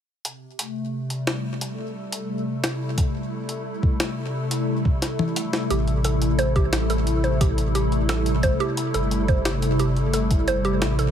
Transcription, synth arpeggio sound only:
5.70 5.77 G4 medium
6.05 6.11 A4 medium
6.39 6.49 C5 loud
6.56 6.66 G4 medium
6.90 7.06 A4 medium
7.24 7.34 C5 medium
7.41 7.47 G4 medium
7.75 7.81 G4 medium
8.09 8.15 A4 medium
8.43 8.54 C5 loud
8.60 8.71 G4 loud
8.94 9.10 A4 medium
9.28 9.39 C5 medium
9.45 9.52 G4 medium
9.80 9.86 G4 medium
10.14 10.20 A4 medium
10.48 10.58 C5 loud
10.65 10.75 G4 loud
10.99 11.11 A4 medium

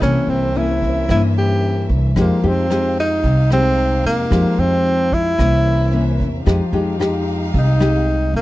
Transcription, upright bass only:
0.01 0.14 C2 medium
0.27 1.04 C2 medium
1.09 1.85 G2 medium
1.89 2.14 C2 medium
2.16 2.29 F2 medium
2.43 3.20 F2 medium
3.23 4.00 C2 medium
4.04 4.29 F2 medium
4.31 4.44 F2 medium
4.58 5.35 F2 medium
5.39 6.16 C2 medium
6.20 6.45 E2 medium
6.46 6.59 F2 medium
6.72 7.49 F2 medium
7.54 8.31 C2 medium
8.33 8.42 F2 medium

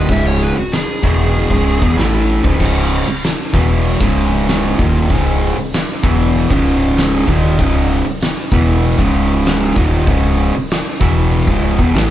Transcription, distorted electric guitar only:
0.10 0.55 C#2 medium
0.10 0.55 G#2 loud
0.10 0.56 C#3 loud
0.58 muted distorted electric guitar stroke medium
1.03 1.49 E2 medium
1.03 1.49 B2 medium
1.03 1.49 E3 loud
1.51 1.81 C#2 medium
1.51 1.81 G#2 loud
1.51 1.81 C#3 loud
1.82 1.96 E2 loud
1.82 1.96 B2 loud
1.97 2.43 A2 loud
1.97 2.43 E3 loud
1.97 2.43 A3 loud
2.44 2.59 C#2 medium
2.44 2.59 G#2 medium
2.60 3.06 C#2 loud
2.60 3.06 G#2 loud
2.60 3.06 C#3 loud
3.07 muted distorted electric guitar stroke medium
3.53 3.99 E2 medium
3.53 3.99 B2 medium
3.53 4.00 E3 loud
4.01 4.78 C#2 medium
4.01 4.78 G#2 medium
4.01 4.78 C#3 loud
4.78 5.09 D#2 loud
4.78 5.09 A#2 loud
4.78 5.09 D#3 loud
5.10 5.56 C#2 loud
5.10 5.56 G#2 loud
5.10 5.56 C#3 loud
5.57 muted distorted electric guitar stroke medium
6.04 6.49 E2 medium
6.04 6.49 B2 loud
6.04 6.49 E3 loud
6.50 7.26 C#2 loud
6.50 7.27 G#2 loud
6.50 7.27 C#3 loud
7.27 7.58 D#2 loud
7.27 7.58 A#2 loud
7.27 7.58 D#3 loud
7.59 8.05 C#2 medium
7.59 8.05 G#2 loud
7.59 8.05 C#3 loud
8.06 muted distorted electric guitar stroke medium
8.52 8.98 E2 medium
8.52 8.98 B2 loud
8.52 8.98 E3 loud
8.99 9.76 C#2 loud
8.99 9.76 G#2 loud
8.99 9.76 C#3 loud
9.77 10.07 D#2 loud
9.77 10.07 A#2 medium
9.77 10.07 D#3 loud
10.07 10.53 C#2 loud
10.07 10.54 G#2 loud
10.07 10.54 C#3 loud
10.55 muted distorted electric guitar stroke medium
11.00 11.47 E2 medium
11.00 11.47 B2 loud
11.00 11.47 E3 loud
11.48 11.78 C#2 loud
11.48 11.79 G#2 loud
11.48 11.79 C#3 loud
11.79 11.94 E2 loud
11.79 11.94 B2 loud
11.95 12.10 A2 loud
11.95 12.10 E3 loud
11.95 12.10 A3 loud

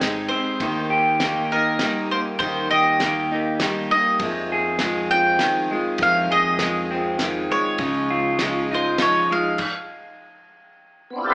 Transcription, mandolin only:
0.00 0.28 D#5 medium
0.29 1.52 C5 medium
1.52 2.11 A#4 medium
2.11 2.19 C5 medium
2.39 2.68 C5 medium
2.71 3.90 D#5 medium
3.91 5.15 D#5 medium
5.11 6.02 G5 medium
6.03 6.33 F5 loud
6.32 7.47 D#5 medium
7.52 8.67 C#5 medium
8.74 9.02 C5 medium
9.02 9.32 C#5 medium
9.32 11.07 F5 medium

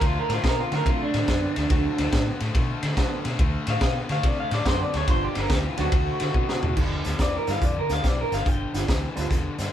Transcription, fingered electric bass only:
0.01 0.18 D2 medium
0.29 0.38 A2 medium
0.44 0.61 B2 medium
0.72 0.81 D3 medium
0.86 1.03 C3 loud
1.14 1.23 A2 medium
1.28 1.45 F#2 medium
1.57 1.65 D2 medium
1.70 1.87 D2 medium
1.99 2.07 D2 medium
2.13 2.30 A2 medium
2.41 2.50 A2 loud
2.55 2.72 B2 medium
2.83 2.92 D3 loud
2.97 3.14 C3 medium
3.25 3.34 B2 medium
3.39 3.56 D2 loud
3.67 3.76 A2 medium
3.81 3.98 B2 medium
4.10 4.18 D3 loud
4.24 4.41 C3 loud
4.51 4.60 A2 medium
4.66 4.83 F#2 medium
4.94 5.03 D2 medium
5.08 5.25 G1 loud
5.36 5.45 G1 medium
5.50 5.67 D2 medium
5.79 5.87 D2 loud
6.21 6.30 D3 loud
6.35 6.52 C3 medium
6.63 6.72 B2 medium
6.77 6.94 G1 medium
7.05 7.14 D2 medium
7.19 7.36 E2 medium
7.48 7.57 G2 medium
7.62 7.79 F2 medium
7.90 7.98 D2 medium
8.04 8.21 B1 medium
8.32 8.41 G1 medium
8.46 8.63 G1 medium
8.74 8.83 G1 medium
8.89 9.06 D2 medium
9.17 9.26 D2 medium
9.31 9.48 E2 loud
9.59 9.67 G2 medium

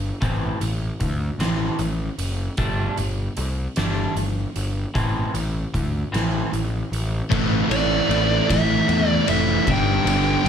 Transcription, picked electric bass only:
0.00 0.10 G1 medium
0.22 0.50 A1 medium
0.61 0.90 A1 medium
1.01 1.29 D2 medium
1.39 1.68 A1 medium
1.79 2.08 A1 medium
2.18 2.47 F#1 medium
2.58 2.87 G1 medium
2.98 3.26 G1 medium
3.37 3.66 C2 medium
3.77 4.06 G1 medium
4.15 4.44 G1 medium
4.56 4.84 G1 medium
4.95 5.24 A1 medium
5.34 5.63 A1 medium
5.74 6.03 D2 medium
6.13 6.42 A1 medium
6.52 6.81 A1 medium
6.91 7.20 A1 medium
7.31 7.61 A1 medium
7.69 7.99 A1 medium
8.09 8.39 A1 medium
8.49 8.79 A1 medium
8.88 9.18 E2 loud
9.28 9.58 F1 medium
9.67 9.97 G1 loud
10.05 10.35 G1 loud
10.44 10.49 G1 medium

